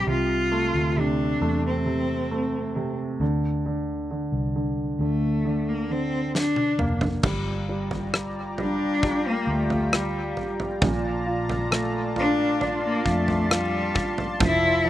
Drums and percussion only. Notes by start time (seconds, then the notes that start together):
6.35 snare
6.56 high tom
6.79 mid tom
7.01 floor tom
7.23 kick, floor tom, crash
7.91 floor tom
8.14 cross-stick
8.58 floor tom
9.03 kick, floor tom
9.70 floor tom
9.93 cross-stick
10.37 floor tom
10.60 floor tom
10.82 kick, floor tom
11.49 floor tom
11.72 cross-stick
12.16 floor tom
12.61 floor tom
13.06 kick
13.28 floor tom
13.51 cross-stick
13.95 kick, floor tom
14.18 floor tom
14.40 kick, floor tom